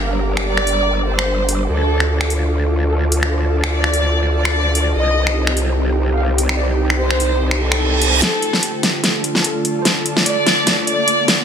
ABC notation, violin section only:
X:1
M:4/4
L:1/8
Q:"Swing 16ths" 1/4=147
K:Dphr
V:1 name="Violin section"
f2 d3 c3 | A3 z3 A2 | c2 d3 d3 | e3 z3 f2 |
d2 c3 A3 | A3 z3 A2 | c2 d3 d3 |]